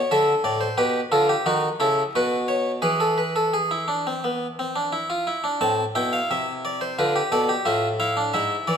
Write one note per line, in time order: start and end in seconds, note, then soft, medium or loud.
0.00 0.10 F#4 medium
0.00 0.11 C#5 medium
0.11 0.33 D3 medium
0.11 0.77 A4 medium
0.11 0.33 E5 medium
0.44 0.66 A2 medium
0.44 0.61 D5 medium
0.61 0.78 C5 medium
0.78 0.99 B2 medium
0.78 0.99 G4 medium
0.78 0.99 B4 medium
1.12 1.33 D3 medium
1.12 1.33 F4 medium
1.12 1.29 A4 medium
1.29 1.46 G4 medium
1.46 1.67 D#3 medium
1.46 1.67 D#4 medium
1.46 1.67 F#4 medium
1.80 2.01 C#3 medium
1.80 2.01 E4 medium
1.80 2.01 A4 medium
2.15 2.82 B2 medium
2.15 2.82 F#4 medium
2.15 2.36 B4 medium
2.48 2.70 C#5 medium
2.82 5.23 E3 medium
2.82 3.00 G#4 medium
2.82 3.17 B4 medium
3.00 3.17 A4 medium
3.18 3.35 B4 medium
3.36 3.53 A4 medium
3.54 3.70 G#4 medium
3.71 3.88 E4 medium
3.88 4.05 D4 medium
4.07 4.23 C4 medium
4.24 4.45 B3 medium
4.59 4.75 C4 medium
4.76 4.92 D4 medium
4.93 5.09 E4 medium
5.10 5.27 F4 medium
5.27 5.44 E4 medium
5.44 5.61 D4 medium
5.61 5.83 A2 medium
5.61 5.83 C4 medium
5.61 5.83 A5 medium
5.95 6.17 B2 medium
5.95 6.95 E4 medium
5.95 6.13 G5 medium
6.13 6.30 F5 medium
6.31 6.97 C3 medium
6.31 6.52 E5 medium
6.65 6.81 D5 medium
6.81 6.98 C5 medium
6.99 7.20 D3 medium
6.99 7.15 F4 medium
6.99 7.20 B4 medium
7.16 7.32 G4 medium
7.32 7.53 B2 medium
7.32 7.49 A4 medium
7.32 7.53 D5 medium
7.49 7.65 G4 medium
7.65 8.31 A2 medium
7.65 7.87 F4 medium
7.65 7.87 E5 medium
8.00 8.16 E4 medium
8.00 8.21 F5 medium
8.17 8.33 D4 medium
8.34 8.55 G#2 medium
8.34 8.77 E4 medium
8.34 8.54 E5 medium
8.67 8.77 E3 medium
8.67 8.77 D5 medium